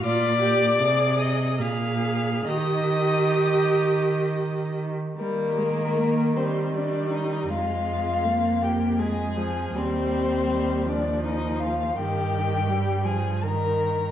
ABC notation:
X:1
M:3/4
L:1/16
Q:1/4=79
K:Eb
V:1 name="Violin"
d'6 e'2 f'4 | e'8- e'2 z2 | B6 c2 d2 e2 | f6 g2 a4 |
c6 d2 e2 f2 | g6 a2 b4 |]
V:2 name="Violin"
d6 e2 f4 | e8- e2 z2 | B,6 C2 D2 E2 | F6 G2 A4 |
C6 D2 E2 F2 | G6 A2 B4 |]
V:3 name="Viola" clef=bass
F2 G2 A4 A4 | G8- G3 z | G,2 A,2 B,2 G,2 G,4 | A,4 B,2 B,2 A,2 F,2 |
G,4 G,2 F,6 | E,4 G,2 F,2 E,4 |]
V:4 name="Cello" clef=bass
B,,4 C,4 B,,4 | E,8- E,3 z | E,12 | F,,12 |
E,,12 | G,,12 |]